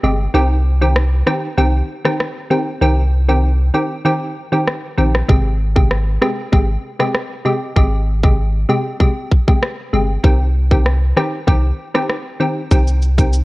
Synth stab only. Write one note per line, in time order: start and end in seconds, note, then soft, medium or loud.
0.03 0.25 C3 medium
0.03 0.26 G#3 medium
0.03 0.26 G4 medium
0.34 0.56 D#3 loud
0.34 0.56 C4 medium
0.34 0.57 G4 loud
0.81 1.03 D#3 medium
0.81 1.03 C4 medium
0.81 1.03 G4 medium
1.27 1.49 D#3 medium
1.27 1.49 C4 medium
1.27 1.49 G4 medium
1.58 2.01 D#3 medium
1.58 2.01 C4 medium
1.58 2.01 G4 loud
2.05 2.26 D#3 medium
2.05 2.26 C4 medium
2.05 2.26 G4 medium
2.50 2.73 D#3 medium
2.50 2.73 C4 medium
2.50 2.73 G4 medium
2.81 3.04 D#3 medium
2.81 3.04 C4 medium
2.81 3.04 G4 loud
3.28 3.50 D#3 medium
3.28 3.50 C4 medium
3.28 3.50 G4 medium
3.74 3.96 D#3 medium
3.74 3.97 C4 medium
3.74 3.97 G4 medium
4.05 4.48 D#3 medium
4.05 4.49 C4 medium
4.05 4.49 G4 loud
4.52 4.74 D#3 medium
4.52 4.74 C4 medium
4.52 4.74 G4 medium
4.97 5.20 D#3 medium
4.97 5.20 C4 medium
4.97 5.20 G4 medium
5.28 5.51 C3 loud
5.28 5.51 G#3 medium
5.28 5.51 G4 loud
5.76 5.97 C3 medium
5.76 5.97 G#3 medium
5.76 5.97 G4 medium
6.21 6.44 C3 medium
6.21 6.44 G#3 medium
6.21 6.44 G4 medium
6.52 6.96 C3 medium
6.52 6.96 G#3 medium
6.52 6.96 G4 loud
7.00 7.21 C3 medium
7.00 7.21 G#3 medium
7.00 7.21 G4 medium
7.45 7.68 C3 medium
7.45 7.68 G#3 medium
7.45 7.68 G4 medium
7.76 7.98 C3 medium
7.76 7.99 G#3 medium
7.76 7.99 G4 loud
8.24 8.45 C3 medium
8.24 8.45 G#3 medium
8.24 8.45 G4 medium
8.69 8.91 C3 medium
8.69 8.92 G#3 medium
8.69 8.92 G4 medium
9.00 9.43 C3 medium
9.00 9.44 G#3 medium
9.00 9.44 G4 loud
9.47 9.69 C3 medium
9.47 9.69 G#3 medium
9.47 9.69 G4 medium
9.93 10.15 C3 medium
9.93 10.15 G#3 medium
9.93 10.15 G4 medium
10.23 10.46 D#3 loud
10.23 10.46 C4 medium
10.23 10.46 G4 loud
10.71 10.92 D#3 medium
10.71 10.92 C4 medium
10.71 10.93 G4 medium
11.16 11.39 D#3 medium
11.16 11.39 C4 medium
11.16 11.39 G4 medium
11.47 11.91 D#3 medium
11.47 11.91 C4 medium
11.47 11.91 G4 loud
11.94 12.16 D#3 medium
11.94 12.16 C4 medium
11.94 12.16 G4 medium
12.40 12.62 D#3 medium
12.40 12.63 C4 medium
12.40 12.63 G4 medium
12.71 12.94 D#3 medium
12.71 12.94 C4 medium
12.71 12.94 G4 loud
13.18 13.39 D#3 medium
13.18 13.40 C4 medium
13.18 13.40 G4 medium